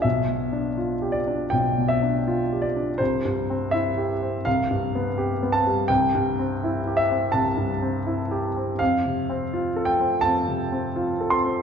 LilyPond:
\new Staff \with { instrumentName = "Grand piano" } { \time 4/4 \key c \major \tempo 4 = 82 << { e''4. d''8 g''8 e''4 d''8 | c''4 e''4 f''4. a''8 | g''4. e''8 a''8 r4. | f''4. g''8 a''4. c'''8 | } \\ { \tuplet 3/2 { b,,8 b,8 d'8 f'8 g'8 d'8 b,,8 b,8 d'8 f'8 g'8 d'8 } | \tuplet 3/2 { c,8 g,8 c'8 e'8 g'8 c'8 c,8 g,8 b8 g'8 b8 g8 } | \tuplet 3/2 { c,8 g,8 c'8 e'8 g'8 c'8 c,8 g,8 c'8 e'8 g'8 c'8 } | \tuplet 3/2 { f,8 c8 c'8 f'8 a'8 c'8 f,8 c8 c'8 f'8 a'8 c'8 } | } >> }